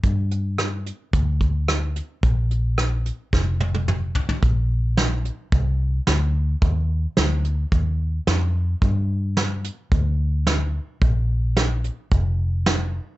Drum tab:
HH |x-x-x-x-x-x-x-x-|x-x-x-x---------|x---x-x-x---x---|x---x-x-x---x---|
SD |----r-------r---|----r---o-------|----o-------o---|----o-------o---|
T1 |----------------|----------oo----|----------------|----------------|
T2 |----------------|------------o---|----------------|----------------|
FT |----------------|--------------oo|----------------|----------------|
BD |o-------o-o-----|o-------o-------|o-------o-------|o-------o-------|

HH |x---x-x-x---x---|x---x-x-x---x---|
SD |----o-------o---|----o-------o---|
T1 |----------------|----------------|
T2 |----------------|----------------|
FT |----------------|----------------|
BD |o-------o-------|o-------o-------|